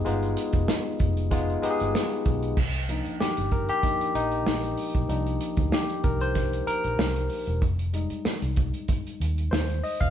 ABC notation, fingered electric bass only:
X:1
M:4/4
L:1/16
Q:"Swing 16ths" 1/4=95
K:Cm
V:1 name="Fingered electric bass" clef=bass
G,,,2 z F,,, z2 F,,,4 z G,,, z2 =B,,,2 | C,,3 z2 G,,,2 z3 B,,,2 B,,,2 z =B,,, | C,,2 z D,, z2 C,,4 z B,,, C,,2 z =E,,, | F,,,3 z2 C,,2 z3 E,,2 E,,2 z =E,,, |]